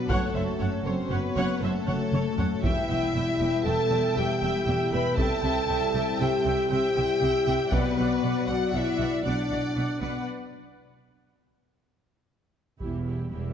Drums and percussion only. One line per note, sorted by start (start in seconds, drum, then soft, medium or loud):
0.10 taiko medium
1.88 taiko mid medium
2.13 taiko mid medium
2.39 taiko low medium
2.64 taiko medium
5.18 taiko medium
7.72 taiko medium
12.80 taiko soft